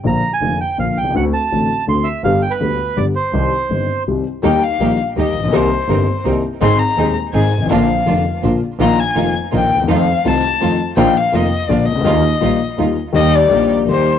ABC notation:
X:1
M:3/4
L:1/16
Q:1/4=165
K:Cm
V:1 name="Bandoneon"
b3 a3 g2 f2 g2 | ^f2 =a6 c'2 =e2 | f2 g =B4- B d2 c2- | c8 z4 |
[K:Eb] z12 | z12 | z12 | z12 |
z12 | z12 | z12 | z12 |
z12 |]
V:2 name="Violin"
z12 | z12 | z12 | z12 |
[K:Eb] g2 f4 z2 e4 | c8 z4 | c'2 b4 z2 a4 | f8 z4 |
b2 a4 z2 g4 | f4 =a6 z2 | g2 f2 e4 d2 e2- | e8- e2 z2 |
e2 d4 z2 c4 |]
V:3 name="String section"
z12 | z12 | z12 | z12 |
[K:Eb] [B,EG]2 z2 [B,EG]2 z2 [B,EG]2 z2 | [CEB]2 z2 [CEB]2 z2 [CEB]2 z2 | [CEA]2 z2 [CEA]2 z2 [CEA]2 z2 | [B,DF]2 z2 [B,DF]2 z2 [B,DF]2 z2 |
[B,EF]2 z2 [B,EF]2 z2 [B,EF]2 z2 | [=A,EF]2 z2 [A,EF]2 z2 [A,EF]2 z2 | [B,EF]2 z2 [B,EF]2 z2 [B,DF]2 z2 | [G,EF]2 z2 [G,EF]2 z2 [G,EF]2 z2 |
[B,EG]4 [B,EG]4 [B,EG]4 |]
V:4 name="Grand piano" clef=bass
[B,,,B,,D,F,B,F]2 z2 [F,,,F,,D,F,B,F]2 z2 [B,,,B,,D,F,B,F]2 z/2 =B,,,/2 C,,/2 _D,,/2 | [D,,D,=A,C^F]2 z2 [=A,,,=A,,D,A,CF]2 z2 [D,,D,A,CF]2 z2 | [G,,,G,,D,G,=B,G]2 z2 [D,,D,G,B,G]2 z2 [G,,,G,,D,G,B,G]2 z2 | [C,,C,E,G,CG]2 z2 [G,,,G,,E,G,CG]2 z2 [C,,C,E,G,CG]2 z2 |
[K:Eb] [E,,E,G,B,G]2 z2 [B,,,B,,E,G,B,G]2 z2 [E,,E,G,B,G]2 z/2 =A,,,/2 B,,,/2 _C,,/2 | [C,,C,E,B,CG]2 z2 [G,,,G,,E,B,CG]2 z2 [C,,C,E,B,CG]2 z2 | [A,,,A,,E,A,CA]2 z2 [E,,,E,,E,A,CA]2 z2 [A,,,A,,E,A,CA]2 z/2 G,,,/2 A,,,/2 =A,,,/2 | [B,,,B,,D,F,B,F]2 z2 [F,,,F,,D,F,B,F]2 z2 [B,,,B,,D,F,B,F]2 z2 |
[B,,,B,,E,F,B,F]2 z2 [F,,,F,,E,F,B,F]2 z2 [B,,,B,,E,F,B,F]2 z/2 D,,/2 E,,/2 _F,,/2 | [F,,E,F,=A,CF]2 z2 [C,,C,E,A,CF]2 z2 [F,,E,F,A,CF]2 z2 | [B,,,B,,E,F,B,F]2 z2 [F,,,F,,E,F,B,F]2 z2 [B,,,B,,D,F,B,F]2 z/2 C,,/2 _D,,/2 =D,,/2 | [E,,E,G,B,F]2 z2 [B,,,B,,E,G,B,F]2 z2 [E,,E,G,B,F]2 z2 |
[E,,E,G,B,G]4 [B,,,B,,E,G,B,G]4 [E,,E,G,B,G]4 |]
V:5 name="Double bass" clef=bass
B,,,2 z2 F,,,2 z2 B,,,2 C,,2 | D,,2 z2 =A,,,2 z2 D,,2 z2 | G,,,2 z2 D,,2 z2 G,,,2 z2 | C,,2 z2 G,,,2 z2 C,,2 z2 |
[K:Eb] E,,2 z2 B,,,2 z2 E,,2 B,,,2 | C,,2 z2 G,,,2 z2 C,,2 z2 | A,,,2 z2 E,,2 z2 A,,,2 A,,,2 | B,,,2 z2 F,,,2 z2 B,,,2 z2 |
B,,,2 z2 F,,,2 z2 B,,,2 E,,2 | F,,2 z2 C,,2 z2 F,,2 z2 | B,,,2 z2 F,,,2 z2 B,,,2 _D,,2 | E,,2 z2 B,,,2 z2 E,,2 z2 |
E,,4 B,,,4 E,,4 |]